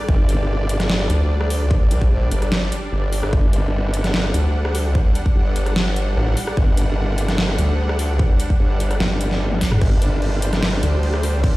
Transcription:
0.00 11.57 G3 medium
0.00 11.57 D4 medium
0.00 3.31 D5 loud
0.09 0.27 G1 loud
0.09 kick loud
0.29 1.08 G1 loud
0.29 closed hi-hat medium
0.69 closed hi-hat medium
0.80 cross-stick medium
0.80 snare soft
0.80 closed hi-hat soft
0.90 snare loud
1.00 cross-stick medium
1.10 1.89 D2 loud
1.10 closed hi-hat medium
1.41 cross-stick medium
1.50 open hi-hat medium
1.71 kick loud
1.91 2.30 A#1 medium
1.91 closed hi-hat medium
2.01 kick medium
2.31 2.70 G1 medium
2.31 closed hi-hat medium
2.42 cross-stick medium
2.42 closed hi-hat soft
2.52 snare loud
2.72 closed hi-hat medium
2.92 3.21 G1 loud
3.13 open hi-hat medium
3.23 3.31 G1 loud
3.23 cross-stick medium
3.33 3.52 G1 loud
3.33 9.80 F#5 loud
3.33 kick loud
3.53 4.33 G1 loud
3.53 closed hi-hat medium
3.94 closed hi-hat medium
4.04 cross-stick medium
4.04 snare soft
4.04 closed hi-hat soft
4.14 snare loud
4.24 cross-stick medium
4.34 5.14 D2 loud
4.34 closed hi-hat medium
4.65 cross-stick medium
4.75 open hi-hat medium
4.95 kick loud
5.15 closed hi-hat medium
5.26 kick medium
5.36 6.15 G1 loud
5.56 closed hi-hat medium
5.66 cross-stick medium
5.66 closed hi-hat soft
5.76 snare loud
5.96 closed hi-hat medium
6.17 6.35 A1 loud
6.37 open hi-hat medium
6.47 cross-stick medium
6.57 6.76 G1 loud
6.57 kick loud
6.77 7.57 G1 loud
6.77 closed hi-hat medium
7.18 closed hi-hat medium
7.28 cross-stick medium
7.28 snare soft
7.28 closed hi-hat soft
7.38 snare loud
7.49 cross-stick medium
7.58 8.38 D2 loud
7.58 closed hi-hat medium
7.89 cross-stick medium
7.99 open hi-hat medium
8.19 kick loud
8.40 closed hi-hat medium
8.50 kick medium
8.60 8.99 G1 loud
8.80 closed hi-hat medium
8.91 cross-stick medium
8.91 closed hi-hat soft
9.00 9.60 G1 loud
9.00 snare loud
9.21 closed hi-hat medium
9.31 snare soft
9.51 high tom medium
9.61 kick medium
9.61 snare medium
9.61 open hi-hat loud
9.72 cross-stick medium
9.72 mid tom medium
9.81 10.00 G1 loud
9.81 11.57 C5 medium
9.81 kick loud
9.81 crash medium
10.02 10.81 G1 loud
10.02 closed hi-hat medium
10.22 crash soft
10.42 closed hi-hat medium
10.53 cross-stick medium
10.53 snare soft
10.53 closed hi-hat soft
10.63 snare loud
10.63 crash medium
10.73 cross-stick medium
10.83 11.57 D2 loud
10.83 closed hi-hat medium
11.03 crash soft
11.14 cross-stick medium
11.23 open hi-hat medium
11.44 kick loud
11.44 crash medium

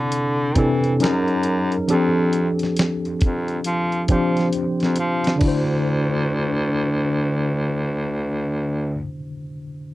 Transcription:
0.00 0.55 C3 medium
0.00 0.58 D3 medium
0.00 0.56 C4 medium
0.00 0.57 D4 medium
0.00 0.57 E4 medium
0.00 0.58 A4 medium
0.12 closed hi-hat medium
0.55 1.00 C3 medium
0.55 0.94 E3 medium
0.55 1.00 C4 medium
0.55 1.00 D4 medium
0.55 1.01 E4 medium
0.55 1.01 A4 medium
0.55 kick medium
0.55 closed hi-hat medium
0.84 closed hi-hat soft
1.00 1.76 F#2 medium
1.00 1.76 F#3 medium
1.00 1.76 C#4 medium
1.00 1.76 D#4 medium
1.00 1.77 G#4 medium
1.00 1.77 A#4 medium
1.00 snare medium
1.00 closed hi-hat medium
1.28 closed hi-hat soft
1.43 closed hi-hat medium
1.72 closed hi-hat soft
1.88 2.51 F2 medium
1.88 3.34 F3 medium
1.88 3.34 C4 medium
1.88 3.35 D4 medium
1.88 3.35 G4 medium
1.88 3.36 A4 medium
1.88 closed hi-hat medium
2.33 closed hi-hat soft
2.59 closed hi-hat soft
2.63 snare soft
2.77 snare medium
2.77 closed hi-hat medium
3.05 3.12 F2 soft
3.05 closed hi-hat soft
3.21 3.59 F2 medium
3.21 kick medium
3.21 closed hi-hat medium
3.48 closed hi-hat soft
3.64 4.03 F3 medium
3.64 closed hi-hat medium
3.92 closed hi-hat soft
4.08 5.21 F3 medium
4.08 4.47 F3 medium
4.08 5.21 C4 medium
4.08 5.22 D4 medium
4.08 5.22 G4 medium
4.08 5.22 C5 medium
4.08 kick medium
4.08 closed hi-hat medium
4.37 snare soft
4.37 closed hi-hat soft
4.53 4.65 F2 soft
4.53 closed hi-hat medium
4.80 4.96 F2 medium
4.80 snare soft
4.80 closed hi-hat soft
4.96 5.36 F3 medium
4.96 closed hi-hat medium
5.24 snare medium
5.24 closed hi-hat soft
5.36 8.94 D3 medium
5.36 8.97 D4 medium
5.41 9.00 D2 medium
5.41 9.00 E4 medium
5.41 kick medium
5.41 crash medium
5.45 9.03 F#4 medium
5.45 9.06 C5 medium

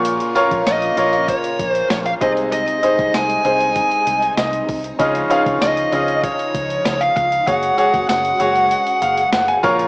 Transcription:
0.00 0.18 A#1 loud
0.00 0.63 A#2 medium
0.00 2.17 C#3 medium
0.00 2.19 A#3 medium
0.00 0.26 F4 medium
0.00 2.19 F4 medium
0.00 0.26 A#4 medium
0.00 0.26 C#5 loud
0.05 closed hi-hat loud
0.20 closed hi-hat medium
0.35 0.87 F4 medium
0.35 0.88 A#4 medium
0.35 0.88 C#5 loud
0.35 closed hi-hat medium
0.51 0.62 A#1 loud
0.51 kick medium
0.51 closed hi-hat soft
0.67 0.89 A#1 loud
0.67 1.29 D#5 medium
0.67 snare loud
0.67 closed hi-hat medium
0.67 tambourine medium
0.82 closed hi-hat medium
0.97 1.31 A#1 medium
0.97 2.01 F4 medium
0.97 2.01 A#4 medium
0.97 2.02 C#5 medium
0.97 closed hi-hat medium
1.13 closed hi-hat medium
1.28 1.70 C#5 medium
1.28 kick medium
1.28 closed hi-hat medium
1.44 closed hi-hat medium
1.59 1.82 A#1 medium
1.59 kick loud
1.59 closed hi-hat medium
1.70 1.87 C5 medium
1.75 closed hi-hat medium
1.90 2.13 A#1 loud
1.90 1.96 C#5 medium
1.90 snare loud
1.90 closed hi-hat medium
1.90 tambourine medium
2.06 2.11 F5 loud
2.06 closed hi-hat soft
2.21 2.66 C2 medium
2.21 3.10 C3 medium
2.21 4.97 C3 medium
2.21 4.97 G#3 medium
2.21 2.73 D#4 medium
2.21 7.43 D#4 loud
2.21 2.73 G#4 medium
2.21 2.74 C5 medium
2.21 2.30 D#5 medium
2.21 kick loud
2.21 closed hi-hat medium
2.37 closed hi-hat medium
2.52 3.16 D#5 loud
2.52 closed hi-hat loud
2.68 closed hi-hat medium
2.82 3.35 D#4 medium
2.82 3.35 G#4 medium
2.82 3.35 C5 medium
2.82 closed hi-hat medium
2.99 3.10 C2 loud
2.99 kick medium
2.99 closed hi-hat soft
3.14 3.36 C2 loud
3.14 4.34 G#5 loud
3.14 snare loud
3.14 closed hi-hat medium
3.14 tambourine medium
3.30 closed hi-hat medium
3.44 3.78 C2 loud
3.44 4.49 D#4 medium
3.44 4.49 G#4 medium
3.44 4.49 C5 medium
3.44 closed hi-hat medium
3.61 closed hi-hat medium
3.76 kick loud
3.76 closed hi-hat medium
3.91 closed hi-hat medium
4.07 4.29 C2 loud
4.07 closed hi-hat medium
4.22 closed hi-hat medium
4.38 4.60 C2 loud
4.38 4.96 D#5 medium
4.38 snare loud
4.38 closed hi-hat medium
4.38 tambourine medium
4.53 closed hi-hat medium
4.69 4.91 C2 loud
4.69 kick medium
4.69 open hi-hat medium
4.84 closed hi-hat medium
4.99 5.22 C#2 loud
4.99 5.88 C#3 medium
4.99 9.88 C#3 medium
4.99 7.45 F3 medium
4.99 5.25 C#4 medium
4.99 5.25 D#4 medium
4.99 5.26 F4 medium
4.99 5.26 G#4 medium
4.99 5.26 D#5 medium
4.99 kick loud
4.99 closed hi-hat loud
5.15 closed hi-hat medium
5.30 5.82 C#4 medium
5.30 5.82 D#4 medium
5.30 5.83 F4 medium
5.30 5.83 G#4 medium
5.30 5.83 F5 loud
5.30 closed hi-hat medium
5.46 5.57 C#2 medium
5.46 kick medium
5.46 closed hi-hat soft
5.61 5.84 C#2 medium
5.61 6.20 D#5 medium
5.61 snare loud
5.61 closed hi-hat loud
5.61 tambourine medium
5.77 closed hi-hat medium
5.92 6.26 C#2 loud
5.92 6.96 C#4 medium
5.92 6.96 D#4 medium
5.92 6.96 F4 medium
5.92 6.97 G#4 medium
5.92 6.97 D#5 medium
5.92 closed hi-hat medium
6.08 closed hi-hat soft
6.23 6.84 C#5 medium
6.23 kick loud
6.23 closed hi-hat medium
6.39 closed hi-hat medium
6.54 6.77 C#2 medium
6.54 kick medium
6.54 closed hi-hat medium
6.70 closed hi-hat medium
6.85 7.08 C#2 loud
6.85 7.01 C#5 medium
6.85 snare loud
6.85 closed hi-hat medium
6.85 tambourine medium
7.01 7.15 F5 loud
7.01 closed hi-hat medium
7.16 7.39 C#2 medium
7.16 7.45 F5 loud
7.16 kick medium
7.16 closed hi-hat medium
7.32 closed hi-hat soft
7.46 7.70 F#1 loud
7.46 9.62 G#3 medium
7.46 7.73 F#4 medium
7.46 9.62 F#4 medium
7.46 7.73 G#4 medium
7.46 7.73 C#5 medium
7.46 8.05 F#5 loud
7.46 kick loud
7.46 closed hi-hat medium
7.63 closed hi-hat medium
7.77 8.30 F#4 medium
7.77 8.30 G#4 medium
7.77 8.30 C#5 medium
7.77 closed hi-hat medium
7.94 8.05 F#1 loud
7.94 kick medium
7.94 closed hi-hat soft
8.09 8.31 F#1 loud
8.09 9.29 F#5 loud
8.09 snare loud
8.09 closed hi-hat loud
8.09 tambourine medium
8.25 closed hi-hat medium
8.39 8.73 F#1 medium
8.39 9.43 F#4 medium
8.39 9.44 G#4 medium
8.39 9.44 C#5 medium
8.39 closed hi-hat medium
8.56 closed hi-hat medium
8.71 closed hi-hat medium
8.87 closed hi-hat medium
9.02 9.24 F#1 medium
9.02 9.31 F5 medium
9.02 closed hi-hat medium
9.17 closed hi-hat medium
9.32 9.55 F#1 loud
9.32 9.47 F#5 medium
9.32 snare loud
9.32 closed hi-hat medium
9.32 tambourine medium
9.48 9.63 G#5 medium
9.48 closed hi-hat soft
9.63 9.88 A#1 loud
9.63 9.88 A#2 medium
9.63 9.88 A#3 medium
9.63 9.88 F4 loud
9.63 9.88 F4 medium
9.63 9.88 A#4 medium
9.63 9.88 C#5 loud
9.63 9.88 A#5 medium
9.63 kick loud
9.63 closed hi-hat medium
9.79 closed hi-hat medium

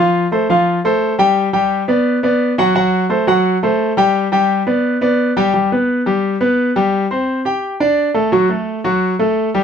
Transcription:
0.00 0.25 F3 medium
0.00 0.25 F4 medium
0.00 0.26 F5 medium
0.32 0.46 A3 medium
0.32 0.46 A4 medium
0.32 0.46 C5 medium
0.50 0.78 F3 medium
0.50 0.78 F4 medium
0.50 0.78 F5 medium
0.85 1.13 A3 medium
0.85 1.13 A4 medium
0.85 1.13 C5 medium
1.19 1.47 G3 medium
1.19 1.47 G4 medium
1.19 1.47 G5 medium
1.53 1.82 G3 medium
1.53 1.82 G4 medium
1.53 1.82 G5 medium
1.88 2.17 B3 medium
1.88 2.17 B4 medium
1.88 2.17 D5 medium
2.23 2.52 B3 medium
2.23 2.52 B4 medium
2.23 2.52 D5 medium
2.58 2.72 F#3 medium
2.58 2.72 F#4 medium
2.58 2.73 F#5 medium
2.75 3.04 F#3 medium
2.75 3.04 F#4 medium
2.75 3.04 F#5 medium
3.09 3.24 A3 medium
3.09 3.24 A4 medium
3.09 3.24 C5 medium
3.27 3.56 F#3 medium
3.27 3.56 F#4 medium
3.27 3.56 F#5 medium
3.63 3.91 A3 medium
3.63 3.91 A4 medium
3.63 3.92 C5 medium
3.97 4.26 G3 medium
3.97 4.26 G4 medium
3.97 4.26 G5 medium
4.32 4.60 G3 medium
4.32 4.61 G4 medium
4.32 4.61 G5 medium
4.67 4.95 B3 medium
4.67 4.95 B4 medium
4.67 4.96 D5 medium
5.01 5.30 B3 medium
5.01 5.30 B4 medium
5.01 5.30 D5 medium
5.37 5.51 G3 medium
5.37 5.51 G4 medium
5.37 5.51 G5 medium
5.54 5.68 G3 medium
5.54 5.68 G4 medium
5.72 6.00 B3 medium
5.72 6.00 B4 medium
6.06 6.35 G3 medium
6.06 6.35 G4 medium
6.41 6.69 B3 medium
6.41 6.70 B4 medium
6.76 7.04 G3 medium
6.76 7.05 G4 medium
7.11 7.39 C4 medium
7.11 7.39 C5 medium
7.45 7.74 G4 medium
7.45 7.74 G5 medium
7.80 8.09 D4 medium
7.80 8.09 D5 medium
8.14 8.29 A3 medium
8.14 8.29 A4 medium
8.32 8.47 F#3 medium
8.32 8.47 F#4 medium
8.50 8.78 A3 medium
8.50 8.79 A4 medium
8.84 9.13 F#3 medium
8.84 9.13 F#4 medium
9.19 9.48 A3 medium
9.19 9.48 A4 medium
9.55 9.64 G3 medium
9.55 9.64 G4 medium

